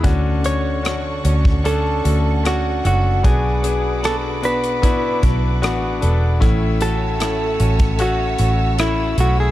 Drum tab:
HH |x-x-x-x-x-x-x-x-|x-x-x-xxx-x-x-x-|x-x-x-xxx-x-x-x-|
SD |----r-------r---|----r-------r---|----r-------r---|
BD |o------o--------|o-------o-o-----|o------o--------|